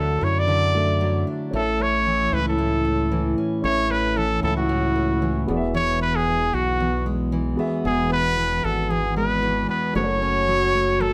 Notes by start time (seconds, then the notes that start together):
Already playing: D2 D3 F#3 A3 D4 E4 F#4 A4 E5
0.21 F#2 E4 C#5
0.39 D5
0.48 D3
0.73 A3 D4 F#4 A4 E5
1.01 F#3
1.27 D4
1.51 A1 A2 C#4 E4 A4
1.55 A4 E5
1.80 C#4 C#5
2.06 E3
2.32 C#2 E4 B4
2.49 A4
2.58 A2
2.85 A3
3.12 E3
3.38 C#4
3.62 A1 A2 C#4 E4 A4 C#5
3.66 E5
3.90 C#4 B4
4.17 E3 A4
4.43 C#2 E4 A4
4.57 F#4
4.69 A2
4.96 A3
5.22 E3
5.46 E1 E2 B3 F#4 G#4
5.50 D5
5.57 E5
5.75 E2 C#5
6.01 B3 B4
6.16 G#4
6.27 E3
6.54 B1 F#4
6.80 E2
7.06 G#3
7.32 E3
7.56 B3 F#4 G#4 E5
7.85 E1 E2 G#4
8.11 B3 B4
8.37 E3
8.64 G#1 F#4 A4
8.90 E2 G#4
9.16 G#3 B4
9.42 E3
9.69 B3 B4
9.93 F#1 F#2 A3 C#4 F#4 C5 C#5
10.04 C#5
10.22 C#4
10.48 F#3
10.75 A3
11.00 F#2 A4